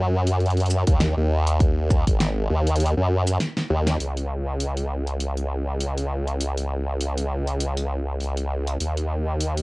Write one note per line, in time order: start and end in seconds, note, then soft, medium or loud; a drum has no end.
0.00 0.84 F#2 loud
0.27 closed hi-hat medium
0.40 closed hi-hat soft
0.46 closed hi-hat soft
0.50 closed hi-hat soft
0.57 closed hi-hat soft
0.60 closed hi-hat soft
0.66 closed hi-hat soft
0.70 shaker medium
0.87 1.15 D#2 loud
0.87 kick loud
0.87 closed hi-hat medium
1.00 snare loud
1.00 closed hi-hat soft
1.17 2.05 D#2 loud
1.47 closed hi-hat medium
1.60 kick loud
1.60 closed hi-hat medium
1.90 kick loud
1.90 cross-stick soft
1.90 shaker medium
2.07 2.48 G#1 loud
2.07 kick medium
2.07 closed hi-hat medium
2.20 snare loud
2.20 closed hi-hat medium
2.50 2.94 D#2 loud
2.67 closed hi-hat medium
2.76 closed hi-hat medium
2.80 closed hi-hat medium
2.86 closed hi-hat soft
2.97 3.38 F#2 medium
3.27 closed hi-hat medium
3.27 shaker medium
3.40 snare medium
3.40 closed hi-hat medium
3.57 snare medium
3.70 3.98 D#2 loud
3.87 snare medium
3.87 closed hi-hat medium
4.00 8.78 C#2 medium
4.00 closed hi-hat medium
4.17 closed hi-hat medium
4.60 closed hi-hat medium
4.77 closed hi-hat medium
5.07 closed hi-hat soft
5.20 closed hi-hat medium
5.37 closed hi-hat medium
5.80 closed hi-hat medium
5.98 closed hi-hat medium
6.28 closed hi-hat soft
6.41 closed hi-hat medium
6.57 closed hi-hat medium
7.00 closed hi-hat medium
7.17 closed hi-hat medium
7.47 closed hi-hat soft
7.60 closed hi-hat medium
7.77 closed hi-hat medium
8.20 closed hi-hat medium
8.37 closed hi-hat medium
8.67 closed hi-hat soft
8.80 9.62 D#2 medium
8.80 closed hi-hat medium
8.97 closed hi-hat medium
9.40 closed hi-hat medium
9.57 closed hi-hat medium